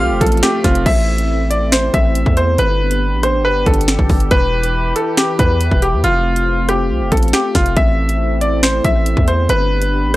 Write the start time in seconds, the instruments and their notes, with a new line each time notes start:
Already playing: grand piano F3 A3 F4 G4, analog synth pad A3 C4 F4
0.00 808-style bass C2, grand piano F5, synth bell F6
0.10 808-style bass F1
0.21 808-style bass A1, grand piano F3 A4, kick, closed hi-hat
0.27 closed hi-hat
0.32 closed hi-hat
0.37 closed hi-hat
0.43 grand piano A3 G4, finger snap, snare
0.64 808-style bass F1, grand piano C4 F4, kick, snare, closed hi-hat
0.75 closed hi-hat
0.86 808-style bass A1, analog synth pad A3 C4 E4, grand piano E5, kick, closed hi-hat, crash
1.18 closed hi-hat
1.50 grand piano D5, closed hi-hat
1.72 grand piano C5, finger snap, snare, closed hi-hat
1.94 808-style bass A1, grand piano E5, kick, closed hi-hat
2.15 closed hi-hat
2.26 808-style bass E2, kick
2.37 grand piano C5, closed hi-hat
2.58 808-style bass G1, analog synth pad B3 D4 G4, grand piano B4, closed hi-hat
2.91 closed hi-hat
3.12 808-style bass A1
3.23 grand piano C5, cross-stick, closed hi-hat
3.39 808-style bass G1
3.45 grand piano B4
3.66 808-style bass G1, grand piano A4, kick, closed hi-hat
3.74 closed hi-hat
3.81 closed hi-hat
3.88 finger snap, snare
3.99 808-style bass G1, kick
4.09 808-style bass G1, kick, open hi-hat
4.20 closed hi-hat
4.31 808-style bass E1, analog synth pad E3 E4 B4, grand piano B4, kick, closed hi-hat
4.63 closed hi-hat
4.96 grand piano A4, closed hi-hat
5.17 grand piano G4, finger snap, snare, closed hi-hat
5.39 808-style bass E2, grand piano B4, kick, closed hi-hat
5.61 closed hi-hat
5.71 808-style bass E1, kick
5.82 grand piano G4, closed hi-hat
5.93 808-style bass E2
6.04 808-style bass F1, analog synth pad A3 C4 F4, grand piano F4, closed hi-hat
6.36 closed hi-hat
6.69 grand piano G4, cross-stick, closed hi-hat
6.90 808-style bass C2
7.01 808-style bass F1
7.12 808-style bass A1, grand piano A4, kick, closed hi-hat
7.17 closed hi-hat
7.23 closed hi-hat
7.28 closed hi-hat
7.33 grand piano G4, finger snap, snare
7.55 808-style bass F1, grand piano F4, kick, snare, closed hi-hat
7.66 closed hi-hat
7.76 808-style bass A1, analog synth pad C4 E4, grand piano E5, kick, closed hi-hat
8.09 closed hi-hat
8.41 grand piano D5, closed hi-hat
8.63 grand piano C5, finger snap, snare, closed hi-hat
8.84 808-style bass A1, grand piano E5, kick, closed hi-hat
9.06 closed hi-hat
9.17 808-style bass E2, kick
9.28 grand piano C5, closed hi-hat
9.49 808-style bass G1, analog synth pad B3 D4 G4, grand piano B4, closed hi-hat
9.82 closed hi-hat
10.03 808-style bass A1